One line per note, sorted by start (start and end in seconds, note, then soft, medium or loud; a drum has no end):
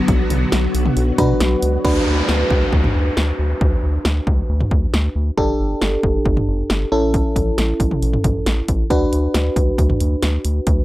0.00 1.81 D3 medium
0.00 1.81 F#3 medium
0.00 1.81 B3 medium
0.00 1.14 D4 medium
0.00 1.14 F#4 medium
0.00 1.81 F#4 medium
0.00 1.14 B4 medium
0.08 0.24 B1 loud
0.08 kick loud
0.08 closed hi-hat medium
0.30 0.46 B1 loud
0.30 closed hi-hat medium
0.30 mid tom medium
0.52 0.68 B1 loud
0.52 snare loud
0.52 closed hi-hat medium
0.74 0.90 B1 loud
0.74 closed hi-hat medium
0.86 mid tom medium
0.96 1.12 B1 loud
0.96 closed hi-hat medium
1.18 1.34 B2 loud
1.18 1.83 D4 medium
1.18 1.83 F#4 medium
1.18 1.83 B4 medium
1.18 kick medium
1.18 closed hi-hat medium
1.18 cowbell medium
1.40 1.56 B1 loud
1.40 snare loud
1.40 closed hi-hat medium
1.63 1.78 C#2 medium
1.63 closed hi-hat medium
1.84 2.00 D2 loud
1.84 5.33 D4 medium
1.84 5.34 F#4 medium
1.84 5.33 B4 medium
1.84 kick loud
1.84 crash medium
1.84 downlifter medium
2.07 2.22 D2 loud
2.29 2.44 D2 loud
2.29 snare loud
2.50 2.66 C#2 medium
2.50 kick medium
2.73 2.88 D2 loud
2.73 kick medium
2.84 mid tom medium
2.95 3.10 D2 loud
3.17 3.32 D2 medium
3.17 snare loud
3.39 3.54 D2 medium
3.61 3.77 D2 loud
3.61 kick loud
3.83 3.99 D2 loud
4.05 4.21 D2 loud
4.05 snare loud
4.27 4.43 C#2 loud
4.27 kick medium
4.49 4.65 D2 loud
4.61 mid tom medium
4.71 4.87 D2 medium
4.71 kick medium
4.94 5.09 D2 loud
4.94 snare loud
5.16 5.31 D2 loud
5.38 5.53 G1 loud
5.38 6.89 D4 medium
5.38 6.89 G4 medium
5.38 6.89 A4 medium
5.38 kick loud
5.59 5.75 G1 medium
5.82 5.97 G1 loud
5.82 snare loud
6.03 6.19 F#1 loud
6.03 kick loud
6.25 6.41 G1 loud
6.25 kick medium
6.37 mid tom medium
6.48 6.63 G1 loud
6.70 6.85 G1 loud
6.70 snare loud
6.92 7.23 A1 loud
6.92 8.86 C#4 medium
6.92 8.86 E4 medium
6.92 8.87 A4 medium
7.14 kick loud
7.14 closed hi-hat medium
7.36 7.51 A1 medium
7.36 kick medium
7.36 closed hi-hat medium
7.58 7.73 A1 loud
7.58 snare loud
7.58 closed hi-hat medium
7.80 7.95 A1 medium
7.80 kick medium
7.80 closed hi-hat medium
7.91 mid tom medium
8.02 8.18 A1 loud
8.02 closed hi-hat medium
8.13 mid tom medium
8.24 8.40 A1 loud
8.24 kick medium
8.24 closed hi-hat medium
8.24 mid tom medium
8.46 8.62 A1 loud
8.46 snare loud
8.46 closed hi-hat medium
8.68 8.84 A1 medium
8.68 kick medium
8.68 closed hi-hat medium
8.90 9.06 D2 loud
8.90 10.85 D4 medium
8.90 10.85 F#4 medium
8.90 10.85 B4 medium
8.90 kick loud
8.90 closed hi-hat medium
9.12 9.28 D2 loud
9.12 closed hi-hat medium
9.34 9.50 D2 loud
9.34 snare loud
9.34 closed hi-hat medium
9.56 9.72 C#2 medium
9.56 kick loud
9.56 closed hi-hat medium
9.78 9.94 D2 loud
9.78 kick medium
9.78 closed hi-hat medium
9.90 mid tom medium
10.00 10.16 D2 loud
10.00 closed hi-hat medium
10.23 10.38 D2 loud
10.23 snare loud
10.23 closed hi-hat medium
10.45 10.60 D2 medium
10.45 closed hi-hat medium
10.67 10.82 D2 loud
10.67 kick loud
10.67 closed hi-hat medium